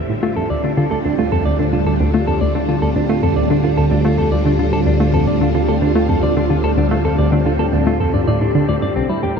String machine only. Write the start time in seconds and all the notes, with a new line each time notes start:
Already playing: A2 D3 E3 G3 C4
2.70 F4
8.96 A2
9.23 G3